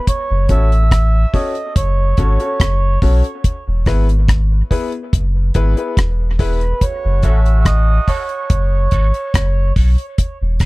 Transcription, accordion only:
0.09 C#5
0.51 E5
1.35 D#5
1.77 C#5
6.41 B4
6.83 C#5
7.24 E5
7.61 E5
7.67 D#5
8.09 C#5

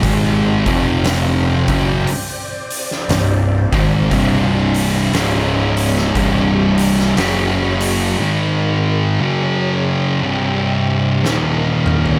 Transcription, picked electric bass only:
0.03 G#1
0.66 F1
1.69 F#1
3.09 C1
3.73 G#1
4.11 C1
5.13 C#1
6.15 C1
7.17 F#1

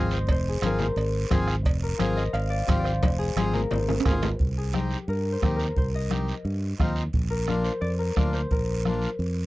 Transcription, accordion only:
Already playing: C4 F4 G#4
0.62 C4 F4 G#4
1.30 C4 F4 G#4
1.99 C4 F4 G#4
2.67 C4 F4 G4
3.37 C4 F4 G#4
4.05 C4 F4 G#4
4.73 C4 D#4 G4
5.42 C4 D#4 G4
6.10 C4 D#4 G4
6.79 C4 D#4 F4
7.48 A#3 D4 F4
8.17 A#3 D4 F4
8.85 A#3 D4 F4

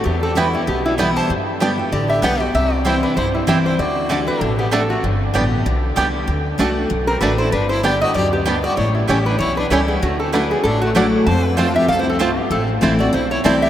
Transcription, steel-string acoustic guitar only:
0.04 E2
0.35 E3 G3 B3 E4
0.53 B3 E4
0.67 B2
0.98 E3 G3 B3 E4
1.30 G2
1.60 D3 G3 B3 G4
1.78 B3 G4
1.92 D3
2.22 D3 G3 B3 G4
2.40 B3 G4
2.55 C3
2.85 E3 G3 C4 E4
3.17 G2
3.47 E3 G3 C4 E4
3.79 D3
4.09 D3 A3 D4 F#4
4.27 D4 F#4
4.41 B2
4.73 A2
5.04 G2
5.34 D3 G3 B3 G4
5.66 D3
5.96 D3 G3 B3 G4
6.28 D3
6.58 D3 A3 D4 F#4
6.90 A2
7.21 D3 A3 D4 F#4
7.52 G2
7.83 D3 G3 B3 G4
8.14 F#2
8.46 G2
8.77 A2
9.09 E3 G3 C#4 E4
9.40 E2
9.71 E3 G3 C#4 E4
10.02 D3
10.34 F#3 A3 E4 F#4
10.52 E4 F#4
10.65 A2
10.95 F#3 A3 E4 F#4
11.27 F2
11.57 F3 A3 C4 F4
11.74 C4 F4
11.88 F2
12.20 G2
12.51 A2
12.81 E3 A3 C4 E4
12.99 C4 E4
13.13 E2
13.44 E3 A3 C4 E4

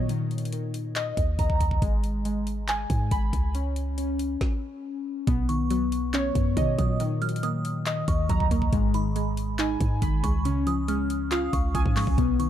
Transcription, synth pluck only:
5.27 B2
5.49 D#3
5.70 F#3
6.14 C#4
6.57 D#3
6.78 F#3
7.00 D#3
7.22 F#3
7.43 A#3
7.86 D#5
8.30 F#3
8.51 A#3
8.73 G#2
8.94 D#3
9.16 G#3
9.59 D#4
10.02 D#3
10.24 G#3
10.45 C#3
10.67 F3
10.88 G#3
11.32 F4
11.75 F3
11.96 G#3
12.18 B2
12.39 D#3

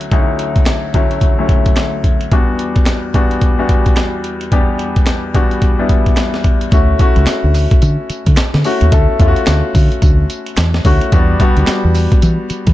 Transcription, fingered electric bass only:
6.72 D2
7.17 C#2
7.28 muted fingered electric bass stroke
7.44 D2
7.82 D3
8.10 muted fingered electric bass stroke
8.27 D3
8.54 D3
8.82 D#2
8.92 D2
9.20 E2
9.48 D2
9.75 D3
10.02 D2
10.58 E2
10.85 D2
11.13 E2
11.57 D2
11.68 muted fingered electric bass stroke
11.85 E2
12.23 E3
12.50 muted fingered electric bass stroke
12.67 E3

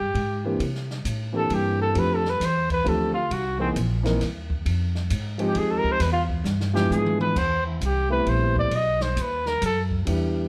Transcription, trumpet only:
Already playing: G4
1.37 A4
1.54 G4
1.81 A4
1.99 B4
2.15 A4
2.30 B4
2.45 C5
2.72 B4
2.89 A4
3.14 F4
3.33 F#4
3.60 C4
5.48 G4
5.58 G#4
5.71 A4
5.78 A#4
5.92 C5
6.01 B4
6.12 F4
6.75 G4
6.92 G#4
7.21 B4
7.38 C5
7.66 E4
7.85 G4
8.12 B4
8.29 C5
8.59 D5
8.76 D#5
9.02 C5
9.22 B4
9.47 A#4
9.66 A4

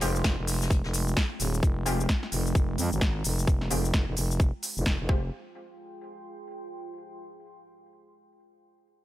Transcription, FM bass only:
0.01 F1
0.38 F1
0.84 F1
1.40 D#1
1.63 F1
2.32 F1
2.78 F2
2.92 G#1
3.24 F1
3.71 F1
4.08 F1
4.17 F1
4.77 F1
5.00 F1
5.09 F1

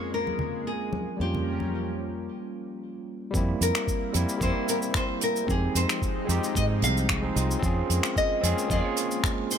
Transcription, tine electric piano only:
Already playing: G#3 C4 C#4 F4
1.17 G3 A#3
1.21 C#4 F4
3.31 G3 A#3
3.35 C4 E4
4.13 G3 A#3 C4 E4
4.38 G3 A#3
4.42 C4 E4
5.44 G#3 C4
5.49 D#4 G4
6.25 G#3 C4
6.29 D#4 G4
7.22 G#3 C4 D#4 G#4
7.34 G#3 C4 D#4 F4
7.59 C4 C#4 F4
7.66 G#4
8.41 C4 C#4 F4 G#4
8.67 A#3 C#4
8.71 F4 G#4

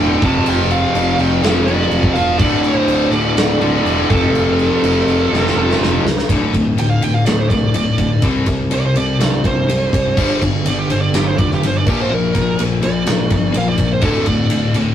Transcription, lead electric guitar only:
Already playing: G5
0.26 A5
0.49 G5
0.71 F5
1.21 G5
1.66 D5
2.13 F5
2.39 D5
2.61 C5
3.11 D5
4.10 A4
6.80 G5
6.90 F5
7.03 G5
7.14 F5
7.25 D5
7.40 C5
7.49 D5
7.76 D5
8.73 D5
8.86 C5
8.98 D5
9.46 C5
10.66 D5
10.79 G4
10.90 C5
11.01 D5
11.15 G4
11.27 C5
11.38 D5
11.55 G4
11.67 C5
11.78 D5
11.89 G4
12.01 C5
12.14 A#4
12.84 D5
13.58 F5
13.69 D5
13.93 C5
14.04 A4
14.27 D5

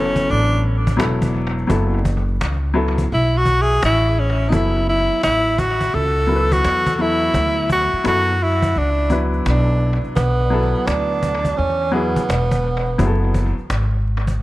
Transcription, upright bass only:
Already playing: F#1
0.30 A1
1.01 E1
1.70 F#1
2.42 C#2
3.12 B1
3.83 A1
4.53 F#1
5.11 muted upright bass stroke
5.24 A1
5.94 C#2
6.65 E2
7.34 D2
7.93 muted upright bass stroke
8.05 F#2
8.76 C#2
9.46 B1
10.05 muted upright bass stroke
10.17 B1
10.75 muted upright bass stroke
10.87 D2
11.59 E2
12.17 muted upright bass stroke
12.29 E1
12.99 F#1
13.58 muted upright bass stroke
13.70 G#1

